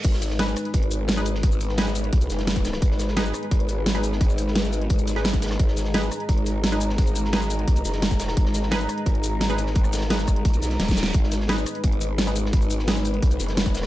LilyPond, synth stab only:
\new Staff \with { instrumentName = "Synth stab" } { \time 4/4 \key gis \minor \tempo 4 = 173 r4 <dis' gis' b'>2~ <dis' gis' b'>16 <dis' gis' b'>16 r8 | r4 <dis' gis' b'>16 r2 r8. | r4 <dis' gis' b'>2~ <dis' gis' b'>16 <dis' gis' b'>16 r8 | r2 r8. <dis' gis' b'>16 r4 |
r4 <dis' gis' b'>2~ <dis' gis' b'>16 <dis' gis' b'>16 r8 | r4 <dis' gis' b'>16 r2 r8. | r4 <dis' gis' b'>2~ <dis' gis' b'>16 <dis' gis' b'>16 r8 | r4 <dis' gis' b'>16 r2 r8. |
r4 <dis' gis' b'>2~ <dis' gis' b'>16 <dis' gis' b'>16 r8 | r4 <dis' gis' b'>16 r2 r8. | }